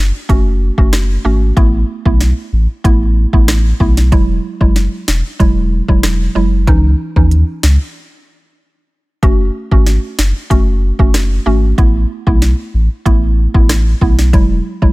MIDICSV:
0, 0, Header, 1, 4, 480
1, 0, Start_track
1, 0, Tempo, 638298
1, 1179, Time_signature, 4, 2, 24, 8
1, 11224, End_track
2, 0, Start_track
2, 0, Title_t, "Synth pluck"
2, 0, Program_c, 0, 84
2, 218, Note_on_c, 0, 57, 92
2, 220, Note_on_c, 0, 61, 81
2, 222, Note_on_c, 0, 66, 98
2, 555, Note_off_c, 0, 57, 0
2, 556, Note_off_c, 0, 61, 0
2, 557, Note_off_c, 0, 66, 0
2, 585, Note_on_c, 0, 57, 82
2, 587, Note_on_c, 0, 61, 71
2, 589, Note_on_c, 0, 66, 89
2, 911, Note_off_c, 0, 57, 0
2, 913, Note_off_c, 0, 61, 0
2, 914, Note_off_c, 0, 66, 0
2, 937, Note_on_c, 0, 57, 80
2, 940, Note_on_c, 0, 61, 73
2, 942, Note_on_c, 0, 66, 84
2, 1160, Note_off_c, 0, 57, 0
2, 1162, Note_off_c, 0, 61, 0
2, 1163, Note_off_c, 0, 66, 0
2, 1177, Note_on_c, 0, 57, 99
2, 1179, Note_on_c, 0, 59, 89
2, 1181, Note_on_c, 0, 64, 111
2, 1347, Note_off_c, 0, 57, 0
2, 1349, Note_off_c, 0, 59, 0
2, 1350, Note_off_c, 0, 64, 0
2, 1545, Note_on_c, 0, 57, 79
2, 1547, Note_on_c, 0, 59, 76
2, 1549, Note_on_c, 0, 64, 86
2, 1706, Note_off_c, 0, 57, 0
2, 1707, Note_off_c, 0, 59, 0
2, 1708, Note_off_c, 0, 64, 0
2, 2138, Note_on_c, 0, 57, 95
2, 2140, Note_on_c, 0, 59, 86
2, 2142, Note_on_c, 0, 64, 100
2, 2475, Note_off_c, 0, 57, 0
2, 2476, Note_off_c, 0, 59, 0
2, 2477, Note_off_c, 0, 64, 0
2, 2505, Note_on_c, 0, 57, 81
2, 2507, Note_on_c, 0, 59, 75
2, 2510, Note_on_c, 0, 64, 89
2, 2666, Note_off_c, 0, 57, 0
2, 2667, Note_off_c, 0, 59, 0
2, 2668, Note_off_c, 0, 64, 0
2, 2857, Note_on_c, 0, 57, 78
2, 2859, Note_on_c, 0, 59, 70
2, 2862, Note_on_c, 0, 64, 83
2, 3027, Note_off_c, 0, 57, 0
2, 3029, Note_off_c, 0, 59, 0
2, 3030, Note_off_c, 0, 64, 0
2, 3097, Note_on_c, 0, 54, 100
2, 3100, Note_on_c, 0, 56, 86
2, 3102, Note_on_c, 0, 64, 105
2, 3268, Note_off_c, 0, 54, 0
2, 3269, Note_off_c, 0, 56, 0
2, 3270, Note_off_c, 0, 64, 0
2, 3464, Note_on_c, 0, 54, 79
2, 3466, Note_on_c, 0, 56, 77
2, 3468, Note_on_c, 0, 64, 88
2, 3625, Note_off_c, 0, 54, 0
2, 3627, Note_off_c, 0, 56, 0
2, 3627, Note_off_c, 0, 64, 0
2, 4057, Note_on_c, 0, 54, 92
2, 4059, Note_on_c, 0, 56, 89
2, 4061, Note_on_c, 0, 64, 104
2, 4395, Note_off_c, 0, 54, 0
2, 4396, Note_off_c, 0, 56, 0
2, 4397, Note_off_c, 0, 64, 0
2, 4425, Note_on_c, 0, 54, 77
2, 4427, Note_on_c, 0, 56, 74
2, 4429, Note_on_c, 0, 64, 88
2, 4751, Note_off_c, 0, 54, 0
2, 4752, Note_off_c, 0, 56, 0
2, 4754, Note_off_c, 0, 64, 0
2, 4776, Note_on_c, 0, 54, 79
2, 4779, Note_on_c, 0, 56, 72
2, 4782, Note_on_c, 0, 64, 84
2, 5000, Note_off_c, 0, 54, 0
2, 5001, Note_off_c, 0, 56, 0
2, 5002, Note_off_c, 0, 64, 0
2, 5018, Note_on_c, 0, 52, 101
2, 5020, Note_on_c, 0, 61, 93
2, 5022, Note_on_c, 0, 63, 107
2, 5188, Note_off_c, 0, 52, 0
2, 5189, Note_off_c, 0, 61, 0
2, 5190, Note_off_c, 0, 63, 0
2, 5385, Note_on_c, 0, 52, 79
2, 5388, Note_on_c, 0, 61, 75
2, 5390, Note_on_c, 0, 63, 85
2, 5546, Note_off_c, 0, 52, 0
2, 5547, Note_off_c, 0, 61, 0
2, 5548, Note_off_c, 0, 63, 0
2, 6938, Note_on_c, 0, 57, 96
2, 6940, Note_on_c, 0, 61, 90
2, 6942, Note_on_c, 0, 66, 112
2, 7108, Note_off_c, 0, 57, 0
2, 7109, Note_off_c, 0, 61, 0
2, 7110, Note_off_c, 0, 66, 0
2, 7305, Note_on_c, 0, 57, 77
2, 7307, Note_on_c, 0, 61, 72
2, 7309, Note_on_c, 0, 66, 87
2, 7466, Note_off_c, 0, 57, 0
2, 7467, Note_off_c, 0, 61, 0
2, 7468, Note_off_c, 0, 66, 0
2, 7897, Note_on_c, 0, 57, 94
2, 7899, Note_on_c, 0, 61, 88
2, 7902, Note_on_c, 0, 66, 100
2, 8235, Note_off_c, 0, 57, 0
2, 8236, Note_off_c, 0, 61, 0
2, 8237, Note_off_c, 0, 66, 0
2, 8264, Note_on_c, 0, 57, 79
2, 8267, Note_on_c, 0, 61, 74
2, 8269, Note_on_c, 0, 66, 91
2, 8591, Note_off_c, 0, 57, 0
2, 8593, Note_off_c, 0, 61, 0
2, 8594, Note_off_c, 0, 66, 0
2, 8617, Note_on_c, 0, 57, 76
2, 8620, Note_on_c, 0, 61, 74
2, 8622, Note_on_c, 0, 66, 86
2, 8840, Note_off_c, 0, 57, 0
2, 8842, Note_off_c, 0, 61, 0
2, 8843, Note_off_c, 0, 66, 0
2, 8857, Note_on_c, 0, 57, 98
2, 8860, Note_on_c, 0, 59, 94
2, 8862, Note_on_c, 0, 64, 108
2, 9028, Note_off_c, 0, 57, 0
2, 9029, Note_off_c, 0, 59, 0
2, 9030, Note_off_c, 0, 64, 0
2, 9224, Note_on_c, 0, 57, 80
2, 9226, Note_on_c, 0, 59, 73
2, 9229, Note_on_c, 0, 64, 86
2, 9386, Note_off_c, 0, 57, 0
2, 9387, Note_off_c, 0, 59, 0
2, 9388, Note_off_c, 0, 64, 0
2, 9817, Note_on_c, 0, 57, 94
2, 9819, Note_on_c, 0, 59, 87
2, 9821, Note_on_c, 0, 64, 104
2, 10155, Note_off_c, 0, 57, 0
2, 10156, Note_off_c, 0, 59, 0
2, 10157, Note_off_c, 0, 64, 0
2, 10184, Note_on_c, 0, 57, 80
2, 10187, Note_on_c, 0, 59, 74
2, 10188, Note_on_c, 0, 64, 88
2, 10345, Note_off_c, 0, 57, 0
2, 10347, Note_off_c, 0, 59, 0
2, 10348, Note_off_c, 0, 64, 0
2, 10537, Note_on_c, 0, 57, 77
2, 10539, Note_on_c, 0, 59, 69
2, 10542, Note_on_c, 0, 64, 87
2, 10708, Note_off_c, 0, 57, 0
2, 10709, Note_off_c, 0, 59, 0
2, 10710, Note_off_c, 0, 64, 0
2, 10777, Note_on_c, 0, 54, 95
2, 10779, Note_on_c, 0, 56, 92
2, 10781, Note_on_c, 0, 64, 109
2, 10947, Note_off_c, 0, 54, 0
2, 10948, Note_off_c, 0, 56, 0
2, 10949, Note_off_c, 0, 64, 0
2, 11144, Note_on_c, 0, 54, 83
2, 11146, Note_on_c, 0, 56, 72
2, 11149, Note_on_c, 0, 64, 90
2, 11224, Note_off_c, 0, 54, 0
2, 11224, Note_off_c, 0, 56, 0
2, 11224, Note_off_c, 0, 64, 0
2, 11224, End_track
3, 0, Start_track
3, 0, Title_t, "Sub bass"
3, 0, Program_c, 1, 38
3, 0, Note_on_c, 1, 30, 93
3, 87, Note_off_c, 1, 30, 0
3, 220, Note_on_c, 1, 30, 106
3, 529, Note_off_c, 1, 30, 0
3, 586, Note_on_c, 1, 30, 93
3, 883, Note_off_c, 1, 30, 0
3, 940, Note_on_c, 1, 32, 96
3, 1141, Note_off_c, 1, 32, 0
3, 1179, Note_on_c, 1, 33, 105
3, 1381, Note_off_c, 1, 33, 0
3, 1546, Note_on_c, 1, 35, 86
3, 1748, Note_off_c, 1, 35, 0
3, 1899, Note_on_c, 1, 33, 100
3, 2006, Note_off_c, 1, 33, 0
3, 2140, Note_on_c, 1, 33, 105
3, 2449, Note_off_c, 1, 33, 0
3, 2505, Note_on_c, 1, 33, 91
3, 2803, Note_off_c, 1, 33, 0
3, 2859, Note_on_c, 1, 35, 89
3, 3099, Note_on_c, 1, 28, 110
3, 3110, Note_off_c, 1, 35, 0
3, 3301, Note_off_c, 1, 28, 0
3, 3466, Note_on_c, 1, 30, 91
3, 3668, Note_off_c, 1, 30, 0
3, 3819, Note_on_c, 1, 28, 94
3, 3926, Note_off_c, 1, 28, 0
3, 4060, Note_on_c, 1, 28, 101
3, 4369, Note_off_c, 1, 28, 0
3, 4425, Note_on_c, 1, 28, 102
3, 4723, Note_off_c, 1, 28, 0
3, 4779, Note_on_c, 1, 30, 91
3, 5019, Note_on_c, 1, 37, 116
3, 5031, Note_off_c, 1, 30, 0
3, 5221, Note_off_c, 1, 37, 0
3, 5386, Note_on_c, 1, 39, 85
3, 5588, Note_off_c, 1, 39, 0
3, 5740, Note_on_c, 1, 37, 103
3, 5847, Note_off_c, 1, 37, 0
3, 6939, Note_on_c, 1, 30, 113
3, 7141, Note_off_c, 1, 30, 0
3, 7306, Note_on_c, 1, 32, 101
3, 7508, Note_off_c, 1, 32, 0
3, 7659, Note_on_c, 1, 30, 96
3, 7766, Note_off_c, 1, 30, 0
3, 7900, Note_on_c, 1, 30, 106
3, 8209, Note_off_c, 1, 30, 0
3, 8266, Note_on_c, 1, 30, 90
3, 8563, Note_off_c, 1, 30, 0
3, 8620, Note_on_c, 1, 32, 100
3, 8821, Note_off_c, 1, 32, 0
3, 8860, Note_on_c, 1, 33, 104
3, 9062, Note_off_c, 1, 33, 0
3, 9226, Note_on_c, 1, 35, 85
3, 9428, Note_off_c, 1, 35, 0
3, 9581, Note_on_c, 1, 33, 98
3, 9687, Note_off_c, 1, 33, 0
3, 9821, Note_on_c, 1, 33, 104
3, 10129, Note_off_c, 1, 33, 0
3, 10186, Note_on_c, 1, 33, 89
3, 10483, Note_off_c, 1, 33, 0
3, 10539, Note_on_c, 1, 35, 89
3, 10780, Note_on_c, 1, 28, 110
3, 10791, Note_off_c, 1, 35, 0
3, 10981, Note_off_c, 1, 28, 0
3, 11147, Note_on_c, 1, 30, 90
3, 11224, Note_off_c, 1, 30, 0
3, 11224, End_track
4, 0, Start_track
4, 0, Title_t, "Drums"
4, 220, Note_on_c, 9, 36, 92
4, 222, Note_on_c, 9, 42, 81
4, 295, Note_off_c, 9, 36, 0
4, 297, Note_off_c, 9, 42, 0
4, 586, Note_on_c, 9, 36, 90
4, 661, Note_off_c, 9, 36, 0
4, 698, Note_on_c, 9, 37, 91
4, 698, Note_on_c, 9, 38, 110
4, 699, Note_on_c, 9, 42, 67
4, 773, Note_off_c, 9, 37, 0
4, 773, Note_off_c, 9, 38, 0
4, 774, Note_off_c, 9, 42, 0
4, 1179, Note_on_c, 9, 36, 121
4, 1179, Note_on_c, 9, 42, 66
4, 1254, Note_off_c, 9, 36, 0
4, 1255, Note_off_c, 9, 42, 0
4, 1546, Note_on_c, 9, 36, 93
4, 1621, Note_off_c, 9, 36, 0
4, 1659, Note_on_c, 9, 38, 68
4, 1661, Note_on_c, 9, 42, 75
4, 1734, Note_off_c, 9, 38, 0
4, 1736, Note_off_c, 9, 42, 0
4, 2140, Note_on_c, 9, 36, 94
4, 2142, Note_on_c, 9, 42, 81
4, 2215, Note_off_c, 9, 36, 0
4, 2217, Note_off_c, 9, 42, 0
4, 2506, Note_on_c, 9, 36, 91
4, 2581, Note_off_c, 9, 36, 0
4, 2618, Note_on_c, 9, 37, 89
4, 2618, Note_on_c, 9, 38, 109
4, 2619, Note_on_c, 9, 42, 69
4, 2693, Note_off_c, 9, 37, 0
4, 2693, Note_off_c, 9, 38, 0
4, 2694, Note_off_c, 9, 42, 0
4, 2859, Note_on_c, 9, 36, 91
4, 2934, Note_off_c, 9, 36, 0
4, 2988, Note_on_c, 9, 38, 74
4, 3063, Note_off_c, 9, 38, 0
4, 3099, Note_on_c, 9, 36, 119
4, 3099, Note_on_c, 9, 42, 71
4, 3174, Note_off_c, 9, 36, 0
4, 3174, Note_off_c, 9, 42, 0
4, 3466, Note_on_c, 9, 36, 91
4, 3541, Note_off_c, 9, 36, 0
4, 3578, Note_on_c, 9, 38, 66
4, 3580, Note_on_c, 9, 42, 70
4, 3654, Note_off_c, 9, 38, 0
4, 3655, Note_off_c, 9, 42, 0
4, 3820, Note_on_c, 9, 38, 121
4, 3895, Note_off_c, 9, 38, 0
4, 4060, Note_on_c, 9, 36, 96
4, 4062, Note_on_c, 9, 42, 83
4, 4135, Note_off_c, 9, 36, 0
4, 4137, Note_off_c, 9, 42, 0
4, 4425, Note_on_c, 9, 36, 94
4, 4501, Note_off_c, 9, 36, 0
4, 4537, Note_on_c, 9, 37, 89
4, 4537, Note_on_c, 9, 38, 113
4, 4538, Note_on_c, 9, 42, 71
4, 4612, Note_off_c, 9, 37, 0
4, 4612, Note_off_c, 9, 38, 0
4, 4613, Note_off_c, 9, 42, 0
4, 5019, Note_on_c, 9, 36, 119
4, 5019, Note_on_c, 9, 42, 67
4, 5094, Note_off_c, 9, 36, 0
4, 5094, Note_off_c, 9, 42, 0
4, 5386, Note_on_c, 9, 36, 85
4, 5461, Note_off_c, 9, 36, 0
4, 5500, Note_on_c, 9, 42, 72
4, 5575, Note_off_c, 9, 42, 0
4, 5740, Note_on_c, 9, 38, 116
4, 5815, Note_off_c, 9, 38, 0
4, 6939, Note_on_c, 9, 36, 123
4, 6939, Note_on_c, 9, 42, 68
4, 7014, Note_off_c, 9, 36, 0
4, 7014, Note_off_c, 9, 42, 0
4, 7306, Note_on_c, 9, 36, 94
4, 7381, Note_off_c, 9, 36, 0
4, 7419, Note_on_c, 9, 38, 68
4, 7421, Note_on_c, 9, 42, 70
4, 7494, Note_off_c, 9, 38, 0
4, 7496, Note_off_c, 9, 42, 0
4, 7660, Note_on_c, 9, 38, 117
4, 7735, Note_off_c, 9, 38, 0
4, 7900, Note_on_c, 9, 36, 91
4, 7902, Note_on_c, 9, 42, 86
4, 7975, Note_off_c, 9, 36, 0
4, 7977, Note_off_c, 9, 42, 0
4, 8266, Note_on_c, 9, 36, 96
4, 8341, Note_off_c, 9, 36, 0
4, 8378, Note_on_c, 9, 37, 89
4, 8378, Note_on_c, 9, 38, 109
4, 8379, Note_on_c, 9, 42, 68
4, 8453, Note_off_c, 9, 37, 0
4, 8453, Note_off_c, 9, 38, 0
4, 8454, Note_off_c, 9, 42, 0
4, 8859, Note_on_c, 9, 36, 115
4, 8860, Note_on_c, 9, 42, 67
4, 8935, Note_off_c, 9, 36, 0
4, 8935, Note_off_c, 9, 42, 0
4, 9226, Note_on_c, 9, 36, 91
4, 9302, Note_off_c, 9, 36, 0
4, 9339, Note_on_c, 9, 38, 72
4, 9341, Note_on_c, 9, 42, 74
4, 9414, Note_off_c, 9, 38, 0
4, 9416, Note_off_c, 9, 42, 0
4, 9820, Note_on_c, 9, 36, 92
4, 9822, Note_on_c, 9, 42, 81
4, 9896, Note_off_c, 9, 36, 0
4, 9897, Note_off_c, 9, 42, 0
4, 10186, Note_on_c, 9, 36, 96
4, 10261, Note_off_c, 9, 36, 0
4, 10298, Note_on_c, 9, 37, 94
4, 10298, Note_on_c, 9, 38, 109
4, 10299, Note_on_c, 9, 42, 70
4, 10373, Note_off_c, 9, 37, 0
4, 10373, Note_off_c, 9, 38, 0
4, 10374, Note_off_c, 9, 42, 0
4, 10539, Note_on_c, 9, 36, 94
4, 10614, Note_off_c, 9, 36, 0
4, 10668, Note_on_c, 9, 38, 73
4, 10744, Note_off_c, 9, 38, 0
4, 10779, Note_on_c, 9, 36, 118
4, 10779, Note_on_c, 9, 42, 67
4, 10855, Note_off_c, 9, 36, 0
4, 10855, Note_off_c, 9, 42, 0
4, 11146, Note_on_c, 9, 36, 87
4, 11222, Note_off_c, 9, 36, 0
4, 11224, End_track
0, 0, End_of_file